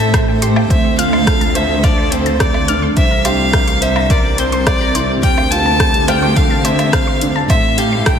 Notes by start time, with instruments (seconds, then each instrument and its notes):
Already playing: cello section A2, ambient pad A3 A4 C5 G5, upright piano G4 A4 C5, violin E5
0.00 closed hi-hat
0.14 synth arpeggio sound C6, kick, cross-stick, closed hi-hat
0.28 synth arpeggio sound G5
0.42 upright piano G4, synth arpeggio sound C6, closed hi-hat
0.56 synth arpeggio sound G5, low woodblock
0.70 cello section D2, upright piano C4, ambient pad D4, synth arpeggio sound C5, violin E5, kick, closed hi-hat
0.98 upright piano F4, violin F5, synth arpeggio sound F6, closed hi-hat
1.13 synth arpeggio sound C6, low woodblock
1.27 upright piano A4, kick, cross-stick, closed hi-hat
1.41 synth arpeggio sound A5, closed hi-hat
1.55 synth arpeggio sound C5, upright piano C5, violin E5, closed hi-hat
1.83 upright piano A4, violin D5, synth arpeggio sound F6, kick, closed hi-hat, low woodblock
1.98 synth arpeggio sound C6
2.12 upright piano C4, violin C5, closed hi-hat
2.26 synth arpeggio sound A5, closed hi-hat
2.40 synth arpeggio sound C5, upright piano C5, violin D5, kick, cross-stick, closed hi-hat
2.54 low woodblock
2.68 upright piano D4, synth arpeggio sound F6, closed hi-hat
2.82 synth arpeggio sound C6
2.97 cello section C2, upright piano C4, ambient pad C4, violin E5, kick, closed hi-hat
3.07 ambient pad G4, synth arpeggio sound A#5
3.25 upright piano G4, synth arpeggio sound C5, violin F5, closed hi-hat, low woodblock
3.32 ambient pad A#4
3.53 upright piano A#4, synth arpeggio sound G6, kick, cross-stick, closed hi-hat
3.68 synth arpeggio sound C6, closed hi-hat
3.82 upright piano C5, violin E5, closed hi-hat
3.96 synth arpeggio sound A#5, low woodblock
4.10 upright piano A#4, synth arpeggio sound C5, violin D5, kick, closed hi-hat
4.38 upright piano C4, violin C5, synth arpeggio sound G6, closed hi-hat
4.52 synth arpeggio sound C6, closed hi-hat
4.66 upright piano C5, violin D5, kick, cross-stick, closed hi-hat, low woodblock
4.81 synth arpeggio sound A#5
4.95 upright piano E4, synth arpeggio sound C5, closed hi-hat
5.23 cello section D2, upright piano C4, ambient pad D4, violin G5, synth arpeggio sound F6, kick, closed hi-hat
5.37 synth arpeggio sound C6, low woodblock
5.51 upright piano F4, violin A5, closed hi-hat
5.66 synth arpeggio sound A5
5.76 ambient pad A4
5.80 upright piano A4, synth arpeggio sound C5, kick, cross-stick, closed hi-hat
5.94 closed hi-hat
6.08 upright piano C5, violin G5, synth arpeggio sound F6, closed hi-hat, low woodblock
6.20 ambient pad C5, synth arpeggio sound C6
6.36 upright piano A4, violin F5, kick, closed hi-hat
6.50 synth arpeggio sound A5
6.64 upright piano C4, synth arpeggio sound C5, violin E5, closed hi-hat
6.79 closed hi-hat, low woodblock
6.93 upright piano C5, violin F5, synth arpeggio sound F6, kick, cross-stick, closed hi-hat
7.07 synth arpeggio sound C6
7.21 upright piano D4, closed hi-hat
7.36 synth arpeggio sound A5
7.49 cello section A2, upright piano C4, synth arpeggio sound C5, violin E5, kick, closed hi-hat, low woodblock
7.77 upright piano G4, violin F5, synth arpeggio sound G6, closed hi-hat
7.92 synth arpeggio sound C6
8.06 upright piano A4, violin G5, kick, cross-stick, closed hi-hat